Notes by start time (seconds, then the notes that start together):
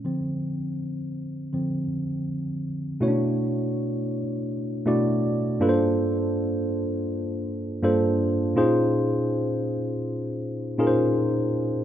0.05 D3 F3 C4
1.53 D3 F3 C4
3.01 B2 A3 C#4 E4 F#4 C#5
3.08 D4
4.85 B2 A3 D4 E4 F#4 D5
5.60 G2 A#3 D4 F4 A4 B4
5.69 C5
7.83 G2 A#3 D4 F4 A4 C5
8.56 A#2 C#4 D#4 F4 G#4 C5
10.78 A#2 C#4 D#4 F4 G#4 A#4
10.87 C5